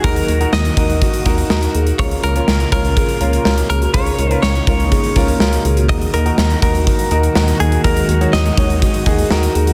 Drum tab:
HH |xxxx-xxxxxxx-xxx|xxxx-xxxxxxx-xxx|xxxx-xxxxxxx-xxx|xxxx-xxxxxxx-xxx|
SD |----o-------o---|----o-------o---|----o-------o---|----o-------o---|
BD |o-----o-o-o-----|o-----o-o-------|o-----o-o-o-----|o-----o-o-------|

HH |xxxx-xxxxxxx-xxx|
SD |----o-------o---|
BD |o-----o-o-o-----|